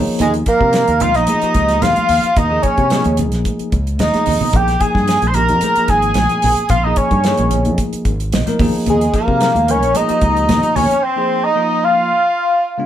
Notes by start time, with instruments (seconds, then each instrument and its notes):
Already playing: tine electric piano F3 A#3 D#4 G#4 C#5
0.08 muted fretless electric bass stroke
0.19 fretless electric bass D#2, tenor saxophone G#3, analog synth lead G#4 D#5, closed hi-hat, low conga
0.34 closed hi-hat
0.46 tine electric piano F3 A#3 D#4 A#4, tenor saxophone A#3, analog synth lead A#4 F5, kick, closed hi-hat
0.61 fretless electric bass C3, kick
0.73 snare, closed hi-hat
0.88 fretless electric bass D#2, closed hi-hat
1.00 tine electric piano F3 A#3 D#4 F4, tenor saxophone F4, analog synth lead F5 C6, closed hi-hat, low conga
1.14 fretless electric bass A#1, tenor saxophone D#4, analog synth lead D#5 A#5, snare, closed hi-hat
1.27 tine electric piano F3 A#3 D#4 G#4, tenor saxophone D#4, analog synth lead D#5 A#5, closed hi-hat, high conga
1.42 tine electric piano F3 A#3 D#4 G4, muted fretless electric bass stroke, closed hi-hat
1.54 fretless electric bass C#2, kick, closed hi-hat
1.68 snare, closed hi-hat
1.81 fretless electric bass D#2, tenor saxophone F4, analog synth lead F5 C6, snare, closed hi-hat, high conga, low conga
1.96 muted fretless electric bass stroke, closed hi-hat, high conga
2.09 fretless electric bass D#2, open hi-hat
2.23 muted fretless electric bass stroke, closed hi-hat
2.36 fretless electric bass D#2, tenor saxophone D#4, analog synth lead D#5 A#5, kick, closed hi-hat, low conga
2.50 tine electric piano F3 A#3 D#4 G#4
2.62 analog synth lead C#5 G#5, kick, closed hi-hat
2.67 tenor saxophone C#4
2.78 fretless electric bass C3, kick, closed hi-hat
2.90 tine electric piano F3 A#3 D#4 G#4, snare, closed hi-hat, high conga
3.04 fretless electric bass D#2, closed hi-hat, high conga
3.17 closed hi-hat, low conga
3.32 fretless electric bass A#1, snare, closed hi-hat
3.45 kick, closed hi-hat, high conga
3.59 muted fretless electric bass stroke, closed hi-hat
3.72 fretless electric bass C#2, kick, closed hi-hat
3.87 closed hi-hat
3.99 fretless electric bass D#2, tenor saxophone D#4, analog synth lead D#5 A#5, snare, closed hi-hat, high conga, low conga
4.13 tine electric piano F3 A#3 D#4 G#4, muted fretless electric bass stroke, snare, closed hi-hat, high conga
4.26 fretless electric bass D#2, open hi-hat, low conga
4.41 muted fretless electric bass stroke, low conga
4.52 fretless electric bass A#1, tine electric piano F3 A#3 D#4 G#4, analog synth lead G5 D6, kick, closed hi-hat, low conga
4.57 tenor saxophone G4
4.68 snare, closed hi-hat
4.79 tine electric piano F3 A#3 D#4 G#4, tenor saxophone G#4, analog synth lead G#5 D#6, kick, closed hi-hat
4.95 fretless electric bass G2, kick, snare
5.08 snare, closed hi-hat
5.22 fretless electric bass A#1, closed hi-hat, high conga
5.27 tenor saxophone C5, analog synth lead C6 G6
5.34 tine electric piano F3 A#3 D#4 G4, tenor saxophone A#4, analog synth lead A#5 F6, closed hi-hat, low conga
5.49 fretless electric bass F2, closed hi-hat
5.61 tine electric piano F3 A#3 D#4 G#4, closed hi-hat, high conga
5.76 tine electric piano F3 A#3 D#4 G#4, muted fretless electric bass stroke, closed hi-hat
5.88 fretless electric bass G#1, tenor saxophone G#4, analog synth lead G#5 D#6, kick, snare, closed hi-hat
6.02 closed hi-hat
6.14 fretless electric bass A#1, snare, closed hi-hat, high conga, low conga
6.29 closed hi-hat, high conga
6.42 fretless electric bass A#1, open hi-hat, low conga
6.56 muted fretless electric bass stroke, closed hi-hat
6.69 fretless electric bass A#1, tenor saxophone F4, analog synth lead F5 C6, kick, closed hi-hat, low conga
6.84 tine electric piano F3 A#3 D#4 G#4, tenor saxophone D#4, analog synth lead D#5 A#5
6.96 tenor saxophone C#4, analog synth lead C#5 G#5, kick, closed hi-hat
7.11 fretless electric bass G2, kick, closed hi-hat
7.24 tine electric piano F3 A#3 D#4 G#4, snare, closed hi-hat
7.37 fretless electric bass A#1, closed hi-hat, high conga
7.51 closed hi-hat, low conga
7.65 fretless electric bass F2, closed hi-hat
7.78 kick, closed hi-hat, high conga
7.93 muted fretless electric bass stroke, closed hi-hat
8.05 fretless electric bass G#1, kick, closed hi-hat
8.20 closed hi-hat
8.32 fretless electric bass A#1, tine electric piano D#5, snare, closed hi-hat, high conga, low conga
8.46 tine electric piano F3 A#3 D#4 A#4, snare, closed hi-hat, high conga
8.59 fretless electric bass D#2, tine electric piano F3 A#3 D#4 G#4, kick, open hi-hat, low conga
8.74 muted fretless electric bass stroke
8.86 fretless electric bass D#2, tenor saxophone G#3, analog synth lead G#4 D#5, closed hi-hat, low conga
9.01 closed hi-hat
9.13 tine electric piano F3 A#3 D#4 G#4, tenor saxophone A#3, analog synth lead A#4 F5, kick, closed hi-hat
9.28 fretless electric bass C3, kick
9.41 snare, closed hi-hat
9.55 fretless electric bass D#2, closed hi-hat, high conga
9.68 tine electric piano F3 A#3 D#4 A#4, tenor saxophone C#4, analog synth lead C#5 G#5, closed hi-hat
9.83 fretless electric bass A#1, closed hi-hat
9.94 tine electric piano F3 A#3 D#4 G#4, tenor saxophone D#4, analog synth lead D#5 A#5, closed hi-hat, high conga
10.08 tine electric piano F3 A#3 D#4 G4, muted fretless electric bass stroke, closed hi-hat
10.21 fretless electric bass C#2, kick, closed hi-hat
10.37 closed hi-hat
10.49 fretless electric bass D#2, snare, closed hi-hat, high conga, low conga
10.63 muted fretless electric bass stroke, closed hi-hat, high conga
10.75 fretless electric bass D#2, tenor saxophone C#4, analog synth lead C#5 G#5, open hi-hat, low conga
10.91 muted fretless electric bass stroke, closed hi-hat
11.02 tenor saxophone C4, analog synth lead C5 G5
11.16 tine electric piano F3 A#3 D#4 G#4
11.44 tenor saxophone D#4, analog synth lead D#5 A#5
11.56 tine electric piano F3 A#3 D#4 F4
11.84 tenor saxophone F4, analog synth lead F5 C6
12.78 tine electric piano C#3 G#3 B3 D4 F4